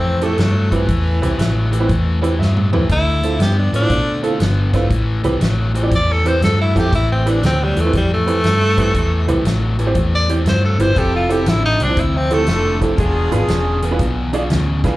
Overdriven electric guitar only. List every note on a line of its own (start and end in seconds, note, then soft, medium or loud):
0.00 0.18 A2 medium
0.00 0.18 E3 medium
0.21 0.36 A2 medium
0.21 0.37 E3 medium
0.38 0.68 A2 medium
0.38 0.68 F#3 medium
0.71 0.86 A2 medium
0.71 0.87 E3 medium
0.88 1.18 A2 medium
0.88 1.19 E3 medium
1.22 1.37 A2 medium
1.22 1.37 E3 medium
1.38 1.69 A2 medium
1.38 1.69 F#3 medium
1.71 1.87 A2 medium
1.71 1.87 E3 medium
1.88 2.19 A2 medium
1.88 2.19 E3 medium
2.22 2.37 A2 medium
2.22 2.37 E3 medium
2.39 2.69 A2 medium
2.39 2.70 F#3 medium
2.73 2.88 A2 medium
2.73 2.88 E3 medium
2.89 3.20 D3 medium
2.89 3.20 A3 medium
3.23 3.38 D3 medium
3.23 3.38 A3 medium
3.39 3.70 D3 medium
3.39 3.70 B3 medium
3.73 3.88 D3 medium
3.73 3.88 A3 medium
3.89 4.20 D3 medium
3.89 4.20 A3 loud
4.23 4.38 D3 medium
4.23 4.39 A3 medium
4.40 4.70 D3 medium
4.40 4.71 B3 medium
4.73 4.89 D3 medium
4.73 4.89 A3 medium
4.89 5.20 A2 medium
4.89 5.21 E3 medium
5.23 5.39 A2 medium
5.23 5.39 E3 medium
5.40 5.71 A2 medium
5.40 5.71 F#3 loud
5.75 5.90 A2 medium
5.75 5.90 E3 medium
5.91 6.22 A2 medium
5.91 6.22 E3 medium
6.24 6.40 A2 medium
6.24 6.40 E3 medium
6.42 6.72 A2 medium
6.42 6.72 F#3 medium
6.75 6.90 A2 medium
6.75 6.91 E3 medium
6.92 7.22 A2 medium
6.92 7.23 E3 medium
7.26 7.41 A2 medium
7.26 7.41 E3 medium
7.42 7.73 A2 medium
7.42 7.73 F#3 medium
7.76 7.91 A2 medium
7.76 7.92 E3 medium
7.93 8.23 A2 medium
7.93 8.24 E3 loud
8.27 8.42 A2 medium
8.27 8.42 E3 medium
8.44 8.74 A2 medium
8.44 8.74 F#3 medium
8.78 8.93 A2 medium
8.78 8.93 E3 medium
8.94 9.25 A2 medium
8.94 9.25 E3 medium
9.28 9.43 A2 medium
9.28 9.44 E3 medium
9.45 9.76 A2 medium
9.45 9.76 F#3 medium
9.79 9.94 A2 medium
9.79 9.94 E3 medium
9.96 10.26 A2 medium
9.96 10.26 E3 medium
10.29 10.45 A2 medium
10.29 10.45 E3 medium
10.46 10.76 A2 medium
10.46 10.77 F#3 medium
10.79 10.95 A2 medium
10.79 10.95 E3 medium
10.96 11.27 F2 medium
10.96 11.27 C3 medium
11.29 11.45 F2 medium
11.29 11.45 C3 medium
11.46 11.77 F2 medium
11.46 11.77 D3 loud
11.80 11.96 F2 medium
11.80 11.96 C3 medium
11.97 12.28 F2 medium
11.97 12.28 C3 medium
12.31 12.46 F2 medium
12.31 12.47 C3 medium
12.49 12.79 F2 medium
12.49 12.79 D3 medium
12.82 12.97 F2 medium
12.82 12.97 C3 medium
12.98 13.29 E2 medium
12.98 13.29 B2 medium
13.32 13.47 E2 medium
13.32 13.47 B2 medium
13.49 13.79 E2 medium
13.49 13.80 C#3 medium
13.82 13.98 E2 medium
13.82 13.98 B2 medium
13.99 14.30 E2 medium
13.99 14.30 B2 medium
14.33 14.48 E2 medium
14.33 14.48 B2 medium
14.50 14.80 E2 medium
14.50 14.81 C#3 medium
14.84 14.97 E2 medium
14.84 14.97 B2 medium